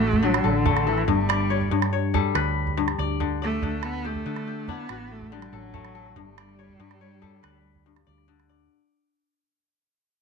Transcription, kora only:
0, 0, Header, 1, 2, 480
1, 0, Start_track
1, 0, Tempo, 423729
1, 1226, Time_signature, 12, 3, 24, 8
1, 11566, End_track
2, 0, Start_track
2, 0, Title_t, "Kora"
2, 0, Program_c, 0, 46
2, 0, Note_on_c, 0, 50, 82
2, 0, Note_on_c, 0, 62, 79
2, 0, Note_on_c, 0, 64, 67
2, 0, Note_on_c, 0, 66, 66
2, 0, Note_on_c, 0, 67, 64
2, 243, Note_off_c, 0, 50, 0
2, 257, Note_on_c, 0, 50, 73
2, 497, Note_on_c, 0, 69, 71
2, 743, Note_on_c, 0, 57, 80
2, 903, Note_off_c, 0, 67, 0
2, 977, Note_off_c, 0, 69, 0
2, 982, Note_on_c, 0, 69, 63
2, 1221, Note_on_c, 0, 43, 76
2, 1283, Note_off_c, 0, 50, 0
2, 1289, Note_off_c, 0, 66, 0
2, 1323, Note_off_c, 0, 64, 0
2, 1446, Note_off_c, 0, 62, 0
2, 1459, Note_on_c, 0, 74, 75
2, 1701, Note_on_c, 0, 73, 64
2, 1928, Note_off_c, 0, 43, 0
2, 1941, Note_on_c, 0, 43, 77
2, 2178, Note_off_c, 0, 73, 0
2, 2183, Note_on_c, 0, 73, 64
2, 2251, Note_off_c, 0, 74, 0
2, 2421, Note_off_c, 0, 69, 0
2, 2424, Note_on_c, 0, 55, 81
2, 2426, Note_on_c, 0, 69, 66
2, 2661, Note_on_c, 0, 71, 69
2, 3005, Note_off_c, 0, 57, 0
2, 3129, Note_off_c, 0, 43, 0
2, 3143, Note_on_c, 0, 43, 81
2, 3389, Note_on_c, 0, 74, 75
2, 3457, Note_off_c, 0, 73, 0
2, 3629, Note_on_c, 0, 50, 83
2, 3685, Note_off_c, 0, 55, 0
2, 3869, Note_off_c, 0, 74, 0
2, 3874, Note_on_c, 0, 74, 68
2, 3919, Note_off_c, 0, 69, 0
2, 4053, Note_off_c, 0, 71, 0
2, 4096, Note_off_c, 0, 50, 0
2, 4110, Note_on_c, 0, 50, 81
2, 4165, Note_off_c, 0, 43, 0
2, 4345, Note_on_c, 0, 69, 75
2, 4584, Note_on_c, 0, 67, 63
2, 4809, Note_off_c, 0, 50, 0
2, 4823, Note_on_c, 0, 50, 84
2, 5062, Note_off_c, 0, 67, 0
2, 5066, Note_on_c, 0, 67, 65
2, 5129, Note_off_c, 0, 74, 0
2, 5308, Note_on_c, 0, 62, 81
2, 5309, Note_on_c, 0, 64, 70
2, 5550, Note_on_c, 0, 66, 71
2, 5838, Note_off_c, 0, 69, 0
2, 6013, Note_off_c, 0, 50, 0
2, 6027, Note_on_c, 0, 50, 77
2, 6263, Note_on_c, 0, 69, 67
2, 6498, Note_on_c, 0, 57, 80
2, 6666, Note_off_c, 0, 67, 0
2, 6734, Note_off_c, 0, 69, 0
2, 6738, Note_on_c, 0, 69, 68
2, 6979, Note_on_c, 0, 43, 75
2, 7045, Note_off_c, 0, 50, 0
2, 7047, Note_off_c, 0, 66, 0
2, 7084, Note_off_c, 0, 64, 0
2, 7210, Note_off_c, 0, 62, 0
2, 7222, Note_on_c, 0, 74, 71
2, 7463, Note_on_c, 0, 73, 64
2, 7685, Note_off_c, 0, 43, 0
2, 7699, Note_on_c, 0, 43, 81
2, 7936, Note_off_c, 0, 73, 0
2, 7940, Note_on_c, 0, 73, 64
2, 8008, Note_off_c, 0, 74, 0
2, 8170, Note_off_c, 0, 69, 0
2, 8175, Note_on_c, 0, 69, 68
2, 8177, Note_on_c, 0, 55, 75
2, 8415, Note_on_c, 0, 71, 67
2, 8761, Note_off_c, 0, 57, 0
2, 8890, Note_off_c, 0, 43, 0
2, 8903, Note_on_c, 0, 43, 70
2, 9138, Note_on_c, 0, 74, 67
2, 9206, Note_off_c, 0, 73, 0
2, 9379, Note_on_c, 0, 50, 80
2, 9444, Note_off_c, 0, 55, 0
2, 9616, Note_off_c, 0, 74, 0
2, 9621, Note_on_c, 0, 74, 64
2, 9667, Note_off_c, 0, 69, 0
2, 9808, Note_off_c, 0, 71, 0
2, 9924, Note_off_c, 0, 43, 0
2, 9924, Note_off_c, 0, 50, 0
2, 10876, Note_off_c, 0, 74, 0
2, 11566, End_track
0, 0, End_of_file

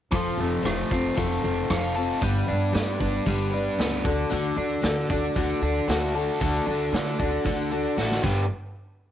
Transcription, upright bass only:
0, 0, Header, 1, 2, 480
1, 0, Start_track
1, 0, Tempo, 523104
1, 107, Time_signature, 4, 2, 24, 8
1, 8365, End_track
2, 0, Start_track
2, 0, Title_t, "Upright bass"
2, 0, Program_c, 0, 32
2, 111, Note_on_c, 0, 29, 71
2, 291, Note_off_c, 0, 29, 0
2, 346, Note_on_c, 0, 29, 71
2, 529, Note_off_c, 0, 29, 0
2, 583, Note_on_c, 0, 29, 77
2, 767, Note_off_c, 0, 29, 0
2, 831, Note_on_c, 0, 29, 76
2, 1012, Note_off_c, 0, 29, 0
2, 1078, Note_on_c, 0, 29, 79
2, 1257, Note_off_c, 0, 29, 0
2, 1322, Note_on_c, 0, 29, 79
2, 1500, Note_off_c, 0, 29, 0
2, 1562, Note_on_c, 0, 29, 80
2, 1923, Note_off_c, 0, 29, 0
2, 2035, Note_on_c, 0, 31, 78
2, 2216, Note_off_c, 0, 31, 0
2, 2291, Note_on_c, 0, 31, 74
2, 2467, Note_off_c, 0, 31, 0
2, 2521, Note_on_c, 0, 43, 75
2, 2701, Note_off_c, 0, 43, 0
2, 2756, Note_on_c, 0, 31, 68
2, 2938, Note_off_c, 0, 31, 0
2, 2996, Note_on_c, 0, 31, 79
2, 3361, Note_off_c, 0, 31, 0
2, 3476, Note_on_c, 0, 37, 78
2, 3659, Note_off_c, 0, 37, 0
2, 3714, Note_on_c, 0, 38, 79
2, 3898, Note_off_c, 0, 38, 0
2, 3964, Note_on_c, 0, 38, 84
2, 4145, Note_off_c, 0, 38, 0
2, 4190, Note_on_c, 0, 38, 72
2, 4376, Note_off_c, 0, 38, 0
2, 4434, Note_on_c, 0, 38, 80
2, 4619, Note_off_c, 0, 38, 0
2, 4680, Note_on_c, 0, 38, 72
2, 4863, Note_off_c, 0, 38, 0
2, 4918, Note_on_c, 0, 38, 84
2, 5101, Note_off_c, 0, 38, 0
2, 5156, Note_on_c, 0, 38, 74
2, 5340, Note_off_c, 0, 38, 0
2, 5395, Note_on_c, 0, 38, 77
2, 5761, Note_off_c, 0, 38, 0
2, 5882, Note_on_c, 0, 38, 83
2, 6063, Note_off_c, 0, 38, 0
2, 6121, Note_on_c, 0, 38, 75
2, 6302, Note_off_c, 0, 38, 0
2, 6357, Note_on_c, 0, 50, 79
2, 6539, Note_off_c, 0, 50, 0
2, 6602, Note_on_c, 0, 38, 73
2, 6782, Note_off_c, 0, 38, 0
2, 6834, Note_on_c, 0, 38, 82
2, 7197, Note_off_c, 0, 38, 0
2, 7316, Note_on_c, 0, 33, 73
2, 7496, Note_off_c, 0, 33, 0
2, 7560, Note_on_c, 0, 31, 84
2, 7778, Note_off_c, 0, 31, 0
2, 8365, End_track
0, 0, End_of_file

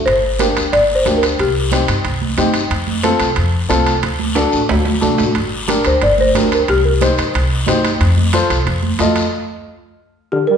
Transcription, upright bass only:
0, 0, Header, 1, 2, 480
1, 0, Start_track
1, 0, Key_signature, -2, "minor"
1, 0, Tempo, 330943
1, 91, Time_signature, 4, 2, 24, 8
1, 15338, End_track
2, 0, Start_track
2, 0, Title_t, "Upright bass"
2, 0, Program_c, 0, 32
2, 91, Note_on_c, 0, 31, 85
2, 667, Note_off_c, 0, 31, 0
2, 821, Note_on_c, 0, 38, 68
2, 1009, Note_off_c, 0, 38, 0
2, 1059, Note_on_c, 0, 31, 83
2, 1440, Note_off_c, 0, 31, 0
2, 1535, Note_on_c, 0, 38, 80
2, 1917, Note_off_c, 0, 38, 0
2, 2022, Note_on_c, 0, 36, 87
2, 2593, Note_off_c, 0, 36, 0
2, 2734, Note_on_c, 0, 43, 81
2, 2925, Note_off_c, 0, 43, 0
2, 2970, Note_on_c, 0, 36, 87
2, 3354, Note_off_c, 0, 36, 0
2, 3452, Note_on_c, 0, 43, 79
2, 3835, Note_off_c, 0, 43, 0
2, 3925, Note_on_c, 0, 41, 86
2, 4503, Note_off_c, 0, 41, 0
2, 4641, Note_on_c, 0, 36, 73
2, 4837, Note_off_c, 0, 36, 0
2, 4891, Note_on_c, 0, 41, 88
2, 5274, Note_off_c, 0, 41, 0
2, 5363, Note_on_c, 0, 36, 84
2, 5750, Note_off_c, 0, 36, 0
2, 5854, Note_on_c, 0, 38, 89
2, 6428, Note_off_c, 0, 38, 0
2, 6571, Note_on_c, 0, 33, 67
2, 6762, Note_off_c, 0, 33, 0
2, 6821, Note_on_c, 0, 38, 91
2, 7200, Note_off_c, 0, 38, 0
2, 7294, Note_on_c, 0, 48, 76
2, 7508, Note_off_c, 0, 48, 0
2, 7545, Note_on_c, 0, 45, 74
2, 7754, Note_off_c, 0, 45, 0
2, 7782, Note_on_c, 0, 31, 86
2, 8353, Note_off_c, 0, 31, 0
2, 8498, Note_on_c, 0, 38, 75
2, 8687, Note_off_c, 0, 38, 0
2, 8735, Note_on_c, 0, 31, 100
2, 9117, Note_off_c, 0, 31, 0
2, 9209, Note_on_c, 0, 38, 80
2, 9593, Note_off_c, 0, 38, 0
2, 9695, Note_on_c, 0, 36, 88
2, 10269, Note_off_c, 0, 36, 0
2, 10418, Note_on_c, 0, 43, 72
2, 10606, Note_off_c, 0, 43, 0
2, 10657, Note_on_c, 0, 36, 96
2, 11038, Note_off_c, 0, 36, 0
2, 11132, Note_on_c, 0, 43, 83
2, 11515, Note_off_c, 0, 43, 0
2, 11611, Note_on_c, 0, 41, 99
2, 12186, Note_off_c, 0, 41, 0
2, 12330, Note_on_c, 0, 36, 83
2, 12521, Note_off_c, 0, 36, 0
2, 12574, Note_on_c, 0, 41, 96
2, 12956, Note_off_c, 0, 41, 0
2, 13050, Note_on_c, 0, 41, 83
2, 13434, Note_off_c, 0, 41, 0
2, 15338, End_track
0, 0, End_of_file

